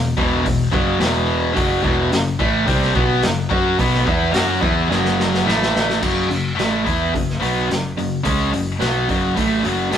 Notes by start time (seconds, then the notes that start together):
Already playing: E1 E2 B2
0.17 E1 E2 B2 E3, kick
0.44 E1 E2 B2, kick, open hi-hat
0.72 F#1 F#2 C#3 F#3, kick
0.99 E1 E2 B2 E3, snare, open hi-hat
1.53 F#1 F#2 C#3 F#3, kick, open hi-hat
1.82 E1 E2 B2 E3, kick
2.11 F#1 F#2 C#3, snare, open hi-hat
2.39 A1 A2 E3 A3, kick
2.65 C2 C3 G3 C4, kick, open hi-hat
2.83 snare
2.94 B1 B2 F#3 B3, kick
3.22 F#1 F#2 C#3, snare, open hi-hat
3.49 F#2 F#3 C#4 F#4, kick
3.78 B1 B2 F#3 B3, kick, open hi-hat
3.94 snare
4.04 E2 E3 B3 E4, kick
4.31 F#2 F#3 C#4 F#4, snare, open hi-hat
4.60 E2 E3 B3 E4, kick
4.88 F#1 F#2 C#3 F#3, snare
5.05 snare
5.20 snare
5.34 snare
5.44 A1 A2 E3 A3
5.49 snare
5.63 snare
5.76 snare
5.90 snare
6.00 F#1 F#2 C#3 F#3, kick, crash
6.29 F#1 F#2 C#3, open hi-hat
6.55 A1 A2 E3 A3, open hi-hat
6.60 snare
6.85 E2 E3 B3 E4, kick, open hi-hat
7.13 F#1 F#2 C#3, kick, open hi-hat
7.30 snare
7.40 B1 B2 F#3 B3, open hi-hat
7.68 F#1 F#2 C#3, snare, open hi-hat
7.98 F#1 F#2 C#3, open hi-hat
8.24 C#2 C#3 G#3 C#4, kick, open hi-hat
8.53 F#1 F#2 C#3, open hi-hat
8.80 B1 B2 F#3 B3, snare, open hi-hat
9.08 F#1 F#2 C#3 F#3, kick, open hi-hat
9.36 A1 A2 E3 A3, kick, open hi-hat
9.64 F#1 F#2 C#3 F#3, open hi-hat
9.91 A1 A2 E3 A3, snare, open hi-hat